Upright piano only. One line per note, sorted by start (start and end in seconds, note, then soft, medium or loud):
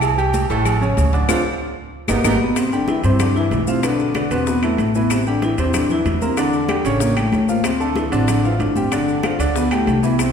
0.00 0.12 E3 medium
0.00 0.12 E4 medium
0.00 0.13 E5 medium
0.18 0.44 G3 medium
0.18 0.44 G4 medium
0.18 0.44 G5 medium
0.50 0.76 A2 loud
0.50 0.76 A3 loud
0.50 0.76 A4 loud
0.82 1.08 C#3 medium
0.82 1.08 C#4 medium
0.82 1.08 C#5 medium
1.13 1.26 D3 medium
1.13 1.27 D4 medium
1.13 1.27 D5 medium
1.29 1.39 C4 loud
1.29 1.39 D4 loud
1.29 1.39 F4 loud
2.09 2.19 G3 medium
2.09 2.19 B3 medium
2.09 2.19 D#4 medium
2.25 2.35 G3 loud
2.25 2.35 B3 loud
2.25 2.35 D#4 loud
2.73 2.99 G3 medium
2.73 2.99 G4 medium
2.73 2.99 G5 medium
3.04 3.30 C3 medium
3.04 3.30 C4 medium
3.04 3.31 C5 medium
3.36 3.62 E3 medium
3.36 3.62 E4 medium
3.36 3.62 E5 medium
3.67 3.80 F3 medium
3.67 3.81 F4 medium
3.67 3.81 F5 medium
3.83 4.09 B2 medium
3.83 4.09 B3 medium
3.83 4.10 B4 medium
4.15 4.28 D3 medium
4.15 4.28 D4 medium
4.15 4.29 D5 medium
4.31 4.57 B2 medium
4.31 4.57 B3 medium
4.31 4.57 B4 medium
4.63 4.89 E3 medium
4.63 4.89 E4 medium
4.63 4.89 E5 medium
4.95 5.21 E3 medium
4.95 5.21 E4 medium
4.95 5.21 E5 medium
5.27 5.53 G3 medium
5.27 5.53 G4 medium
5.27 5.53 G5 medium
5.59 5.85 C3 medium
5.59 5.85 C4 loud
5.59 5.85 C5 medium
5.90 6.16 E3 medium
5.90 6.16 E4 medium
5.90 6.16 E5 medium
6.22 6.35 A#3 medium
6.22 6.35 A#4 medium
6.22 6.35 A#5 medium
6.38 6.64 D3 medium
6.38 6.64 D4 medium
6.38 6.64 D5 medium
6.69 6.82 G3 medium
6.69 6.82 G4 medium
6.69 6.83 G5 medium
6.85 7.11 C#3 medium
6.85 7.11 C#4 medium
6.85 7.11 C#5 medium
7.16 7.43 G3 medium
7.16 7.43 G4 medium
7.16 7.43 G5 medium
7.48 7.75 F3 medium
7.48 7.75 F4 medium
7.48 7.75 F5 medium
7.80 8.06 A3 medium
7.80 8.06 A4 medium
7.80 8.07 A5 medium
8.12 8.38 D3 medium
8.12 8.38 D4 medium
8.12 8.38 D5 medium
8.44 8.70 F3 medium
8.44 8.70 F4 medium
8.44 8.71 F5 medium
8.76 8.89 G3 medium
8.76 8.89 G4 medium
8.76 8.90 G5 medium
8.92 9.18 D3 medium
8.92 9.18 D4 medium
8.92 9.18 D5 medium
9.24 9.37 F3 medium
9.24 9.37 F4 medium
9.24 9.37 F5 medium
9.40 9.66 D3 medium
9.40 9.66 D4 medium
9.40 9.66 D5 medium
9.72 9.98 G3 medium
9.72 9.98 G4 medium
9.72 9.98 G5 medium
10.03 10.29 E3 medium
10.03 10.29 E4 medium
10.03 10.29 E5 medium